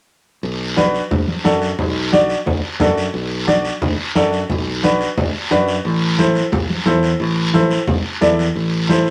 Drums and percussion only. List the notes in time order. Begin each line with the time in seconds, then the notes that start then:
0.43 long guiro
0.78 high conga, short guiro
0.94 short guiro
1.11 low conga, long guiro
1.28 high conga
1.45 high conga, short guiro
1.62 short guiro
1.79 low conga, long guiro
2.13 high conga, short guiro
2.29 short guiro
2.47 low conga, long guiro
2.80 high conga, low conga, short guiro
2.97 short guiro
3.14 long guiro
3.48 high conga, short guiro
3.65 short guiro
3.82 low conga, long guiro
4.15 high conga, short guiro
4.33 short guiro
4.50 low conga, long guiro
4.84 high conga, short guiro
5.01 short guiro
5.18 low conga, long guiro
5.51 high conga, short guiro
5.68 short guiro
5.85 long guiro
6.18 high conga, short guiro
6.35 short guiro
6.52 low conga, long guiro
6.70 high conga
6.86 high conga, short guiro
7.03 short guiro
7.20 long guiro
7.54 high conga, short guiro
7.71 short guiro
7.87 low conga, long guiro
8.22 high conga, short guiro
8.39 short guiro
8.56 long guiro
8.89 high conga, short guiro
9.07 short guiro